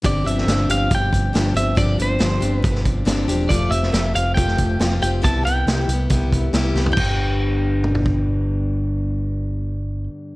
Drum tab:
CC |----------------|----------------|----------------|----------------|
HH |x-x-x-x-x-x-x-x-|x-x-x-x-x-x-x-x-|x-x-x-x-x-x-x-x-|x-x-x-x-x-x-x---|
SD |---oo-------o---|----o----o--o---|---oo----o--o---|----o-------o-o-|
T2 |----------------|----------------|----------------|----------------|
FT |----------------|----------------|----------------|---------------o|
BD |o-------o-o-----|o-------o-o-----|o-------o-o-----|o-------o-o-----|

CC |x---------------|----------------|
HH |----------------|----------------|
SD |----------------|----------------|
T2 |--------o-------|----------------|
FT |---------o------|----------------|
BD |o---------o-----|----------------|